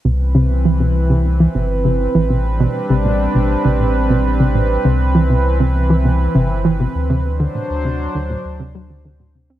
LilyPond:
<<
  \new Staff \with { instrumentName = "Analog synth pad" } { \time 4/4 \key c \lydian \tempo 4 = 100 << { b'1~ | b'1~ | b'1 | c''1 | } \\ { <e c'>1 | <g d'>1 | e1 | <fis d'>1 | } >> }
  \new Staff \with { instrumentName = "Synth arpeggio sound" } { \clef bass \time 4/4 \key c \lydian b,16 r16 c16 r16 e16 b,16 r16 c16 r16 e16 b,16 r16 c16 r16 e16 b,16 | r16 b,16 r16 c16 a,16 r16 b,16 r16 c16 a,16 r16 b,16 r16 c16 a,16 r16 | c16 r16 e16 b,16 r16 c16 r16 e16 b,16 r16 c16 r16 e16 b,16 r16 c16 | r16 d16 a,16 r16 c16 r16 d16 a,16 r16 c16 fis16 d16 d16 a,16 c16 c'16 | }
  \new Staff \with { instrumentName = "Sub bass" } { \clef bass \time 4/4 \key c \lydian c,2~ c,8 g,,4 a,,8~ | a,,8 r16 a,,8. a,,16 r16 a,,2 | c,2~ c,8 g,,4 d,8~ | d,8 r16 d,8. d,16 r16 d,2 | }
>>